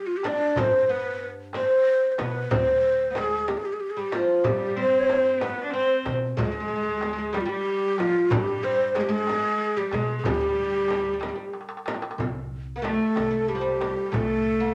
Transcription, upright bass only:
0, 0, Header, 1, 2, 480
1, 0, Start_track
1, 0, Tempo, 645856
1, 421, Time_signature, 6, 3, 24, 8
1, 10955, End_track
2, 0, Start_track
2, 0, Title_t, "Upright bass"
2, 0, Program_c, 0, 32
2, 416, Note_on_c, 0, 43, 91
2, 1182, Note_off_c, 0, 43, 0
2, 1625, Note_on_c, 0, 47, 83
2, 1814, Note_off_c, 0, 47, 0
2, 1864, Note_on_c, 0, 38, 88
2, 2627, Note_off_c, 0, 38, 0
2, 3299, Note_on_c, 0, 43, 88
2, 4064, Note_off_c, 0, 43, 0
2, 4502, Note_on_c, 0, 47, 89
2, 4693, Note_off_c, 0, 47, 0
2, 4737, Note_on_c, 0, 38, 85
2, 5502, Note_off_c, 0, 38, 0
2, 6174, Note_on_c, 0, 43, 94
2, 6940, Note_off_c, 0, 43, 0
2, 7375, Note_on_c, 0, 47, 89
2, 7568, Note_off_c, 0, 47, 0
2, 7617, Note_on_c, 0, 38, 92
2, 8382, Note_off_c, 0, 38, 0
2, 9054, Note_on_c, 0, 36, 88
2, 9629, Note_off_c, 0, 36, 0
2, 9782, Note_on_c, 0, 36, 81
2, 10354, Note_off_c, 0, 36, 0
2, 10495, Note_on_c, 0, 36, 86
2, 10955, Note_off_c, 0, 36, 0
2, 10955, End_track
0, 0, End_of_file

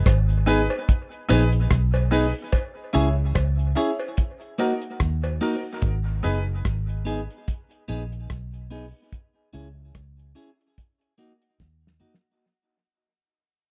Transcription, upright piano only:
0, 0, Header, 1, 2, 480
1, 0, Start_track
1, 0, Key_signature, 5, "minor"
1, 0, Tempo, 824176
1, 1473, Time_signature, 4, 2, 24, 8
1, 7980, End_track
2, 0, Start_track
2, 0, Title_t, "Upright piano"
2, 0, Program_c, 0, 0
2, 269, Note_on_c, 0, 63, 86
2, 273, Note_on_c, 0, 68, 84
2, 277, Note_on_c, 0, 71, 91
2, 376, Note_off_c, 0, 63, 0
2, 378, Note_off_c, 0, 68, 0
2, 379, Note_off_c, 0, 71, 0
2, 749, Note_on_c, 0, 63, 90
2, 753, Note_on_c, 0, 68, 81
2, 755, Note_on_c, 0, 71, 93
2, 855, Note_off_c, 0, 63, 0
2, 857, Note_off_c, 0, 68, 0
2, 859, Note_off_c, 0, 71, 0
2, 1229, Note_on_c, 0, 63, 89
2, 1231, Note_on_c, 0, 68, 69
2, 1235, Note_on_c, 0, 71, 81
2, 1336, Note_off_c, 0, 63, 0
2, 1337, Note_off_c, 0, 68, 0
2, 1339, Note_off_c, 0, 71, 0
2, 1706, Note_on_c, 0, 64, 83
2, 1711, Note_on_c, 0, 68, 71
2, 1714, Note_on_c, 0, 73, 87
2, 1814, Note_off_c, 0, 64, 0
2, 1817, Note_off_c, 0, 68, 0
2, 1818, Note_off_c, 0, 73, 0
2, 2186, Note_on_c, 0, 64, 88
2, 2191, Note_on_c, 0, 68, 83
2, 2193, Note_on_c, 0, 73, 100
2, 2294, Note_off_c, 0, 64, 0
2, 2297, Note_off_c, 0, 68, 0
2, 2298, Note_off_c, 0, 73, 0
2, 2673, Note_on_c, 0, 63, 84
2, 2676, Note_on_c, 0, 66, 77
2, 2679, Note_on_c, 0, 70, 87
2, 2778, Note_off_c, 0, 63, 0
2, 2780, Note_off_c, 0, 66, 0
2, 2781, Note_off_c, 0, 70, 0
2, 3152, Note_on_c, 0, 63, 81
2, 3155, Note_on_c, 0, 66, 71
2, 3159, Note_on_c, 0, 70, 95
2, 3257, Note_off_c, 0, 63, 0
2, 3259, Note_off_c, 0, 66, 0
2, 3261, Note_off_c, 0, 70, 0
2, 3628, Note_on_c, 0, 63, 76
2, 3629, Note_on_c, 0, 68, 70
2, 3633, Note_on_c, 0, 71, 91
2, 3735, Note_off_c, 0, 63, 0
2, 3736, Note_off_c, 0, 68, 0
2, 3738, Note_off_c, 0, 71, 0
2, 7980, End_track
0, 0, End_of_file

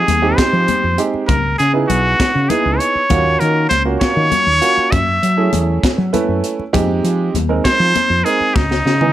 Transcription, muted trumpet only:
0, 0, Header, 1, 2, 480
1, 0, Start_track
1, 0, Tempo, 605144
1, 1022, Time_signature, 6, 3, 24, 8
1, 7240, End_track
2, 0, Start_track
2, 0, Title_t, "Muted trumpet"
2, 0, Program_c, 0, 59
2, 0, Note_on_c, 0, 68, 90
2, 286, Note_on_c, 0, 72, 101
2, 298, Note_off_c, 0, 68, 0
2, 801, Note_off_c, 0, 72, 0
2, 1008, Note_on_c, 0, 70, 82
2, 1238, Note_off_c, 0, 70, 0
2, 1254, Note_on_c, 0, 68, 90
2, 1364, Note_off_c, 0, 68, 0
2, 1492, Note_on_c, 0, 66, 101
2, 1977, Note_on_c, 0, 68, 84
2, 1989, Note_off_c, 0, 66, 0
2, 2209, Note_on_c, 0, 73, 100
2, 2221, Note_off_c, 0, 68, 0
2, 2695, Note_on_c, 0, 70, 86
2, 2707, Note_off_c, 0, 73, 0
2, 2924, Note_off_c, 0, 70, 0
2, 2929, Note_on_c, 0, 72, 98
2, 3040, Note_off_c, 0, 72, 0
2, 3174, Note_on_c, 0, 73, 114
2, 3896, Note_on_c, 0, 76, 98
2, 3908, Note_off_c, 0, 73, 0
2, 4440, Note_off_c, 0, 76, 0
2, 6068, Note_on_c, 0, 72, 119
2, 6540, Note_on_c, 0, 68, 98
2, 6552, Note_off_c, 0, 72, 0
2, 6781, Note_on_c, 0, 63, 88
2, 6793, Note_off_c, 0, 68, 0
2, 7240, Note_off_c, 0, 63, 0
2, 7240, End_track
0, 0, End_of_file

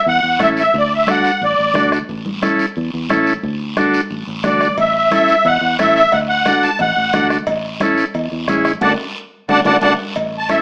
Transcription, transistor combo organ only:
0, 0, Header, 1, 2, 480
1, 0, Start_track
1, 0, Tempo, 336889
1, 1049, Time_signature, 4, 2, 24, 8
1, 15130, End_track
2, 0, Start_track
2, 0, Title_t, "Transistor combo organ"
2, 0, Program_c, 0, 18
2, 557, Note_on_c, 0, 61, 79
2, 559, Note_on_c, 0, 64, 68
2, 569, Note_on_c, 0, 69, 78
2, 899, Note_off_c, 0, 61, 0
2, 900, Note_off_c, 0, 64, 0
2, 905, Note_off_c, 0, 69, 0
2, 1535, Note_on_c, 0, 62, 79
2, 1540, Note_on_c, 0, 66, 60
2, 1543, Note_on_c, 0, 69, 81
2, 1868, Note_off_c, 0, 62, 0
2, 1871, Note_off_c, 0, 66, 0
2, 1873, Note_off_c, 0, 69, 0
2, 2494, Note_on_c, 0, 62, 66
2, 2500, Note_on_c, 0, 66, 68
2, 2507, Note_on_c, 0, 69, 71
2, 2828, Note_off_c, 0, 62, 0
2, 2831, Note_off_c, 0, 66, 0
2, 2835, Note_off_c, 0, 69, 0
2, 3448, Note_on_c, 0, 61, 80
2, 3459, Note_on_c, 0, 64, 74
2, 3462, Note_on_c, 0, 69, 83
2, 3785, Note_off_c, 0, 61, 0
2, 3791, Note_off_c, 0, 64, 0
2, 3792, Note_off_c, 0, 69, 0
2, 4411, Note_on_c, 0, 61, 82
2, 4418, Note_on_c, 0, 64, 77
2, 4420, Note_on_c, 0, 69, 98
2, 4747, Note_off_c, 0, 61, 0
2, 4751, Note_off_c, 0, 64, 0
2, 4751, Note_off_c, 0, 69, 0
2, 5378, Note_on_c, 0, 62, 80
2, 5383, Note_on_c, 0, 66, 86
2, 5389, Note_on_c, 0, 69, 96
2, 5711, Note_off_c, 0, 62, 0
2, 5713, Note_off_c, 0, 66, 0
2, 5716, Note_off_c, 0, 69, 0
2, 6326, Note_on_c, 0, 62, 71
2, 6335, Note_on_c, 0, 66, 65
2, 6341, Note_on_c, 0, 69, 75
2, 6664, Note_off_c, 0, 62, 0
2, 6669, Note_off_c, 0, 66, 0
2, 6672, Note_off_c, 0, 69, 0
2, 7293, Note_on_c, 0, 61, 71
2, 7298, Note_on_c, 0, 64, 64
2, 7304, Note_on_c, 0, 69, 76
2, 7628, Note_off_c, 0, 61, 0
2, 7630, Note_off_c, 0, 64, 0
2, 7633, Note_off_c, 0, 69, 0
2, 8253, Note_on_c, 0, 61, 78
2, 8253, Note_on_c, 0, 64, 66
2, 8254, Note_on_c, 0, 69, 81
2, 8588, Note_off_c, 0, 61, 0
2, 8588, Note_off_c, 0, 64, 0
2, 8588, Note_off_c, 0, 69, 0
2, 9216, Note_on_c, 0, 62, 72
2, 9227, Note_on_c, 0, 66, 59
2, 9230, Note_on_c, 0, 69, 73
2, 9549, Note_off_c, 0, 62, 0
2, 9554, Note_off_c, 0, 66, 0
2, 9556, Note_off_c, 0, 69, 0
2, 10174, Note_on_c, 0, 62, 69
2, 10178, Note_on_c, 0, 66, 60
2, 10189, Note_on_c, 0, 69, 79
2, 10507, Note_off_c, 0, 62, 0
2, 10509, Note_off_c, 0, 66, 0
2, 10515, Note_off_c, 0, 69, 0
2, 11134, Note_on_c, 0, 61, 80
2, 11146, Note_on_c, 0, 64, 77
2, 11153, Note_on_c, 0, 69, 89
2, 11467, Note_off_c, 0, 61, 0
2, 11473, Note_off_c, 0, 64, 0
2, 11476, Note_off_c, 0, 69, 0
2, 12096, Note_on_c, 0, 61, 85
2, 12100, Note_on_c, 0, 64, 78
2, 12108, Note_on_c, 0, 68, 89
2, 12427, Note_off_c, 0, 61, 0
2, 12429, Note_off_c, 0, 64, 0
2, 12433, Note_off_c, 0, 68, 0
2, 12580, Note_on_c, 0, 66, 85
2, 12581, Note_on_c, 0, 62, 93
2, 12581, Note_on_c, 0, 69, 91
2, 12728, Note_off_c, 0, 62, 0
2, 12728, Note_off_c, 0, 66, 0
2, 12729, Note_off_c, 0, 69, 0
2, 13522, Note_on_c, 0, 69, 99
2, 13524, Note_on_c, 0, 62, 88
2, 13528, Note_on_c, 0, 66, 87
2, 13677, Note_off_c, 0, 69, 0
2, 13678, Note_off_c, 0, 62, 0
2, 13681, Note_off_c, 0, 66, 0
2, 13769, Note_on_c, 0, 66, 99
2, 13771, Note_on_c, 0, 69, 104
2, 13773, Note_on_c, 0, 62, 99
2, 13921, Note_off_c, 0, 66, 0
2, 13922, Note_off_c, 0, 69, 0
2, 13924, Note_off_c, 0, 62, 0
2, 14001, Note_on_c, 0, 62, 83
2, 14001, Note_on_c, 0, 69, 99
2, 14002, Note_on_c, 0, 66, 98
2, 14157, Note_off_c, 0, 62, 0
2, 14157, Note_off_c, 0, 66, 0
2, 14157, Note_off_c, 0, 69, 0
2, 14960, Note_on_c, 0, 61, 64
2, 14965, Note_on_c, 0, 64, 61
2, 14968, Note_on_c, 0, 69, 76
2, 15130, Note_off_c, 0, 61, 0
2, 15130, Note_off_c, 0, 64, 0
2, 15130, Note_off_c, 0, 69, 0
2, 15130, End_track
0, 0, End_of_file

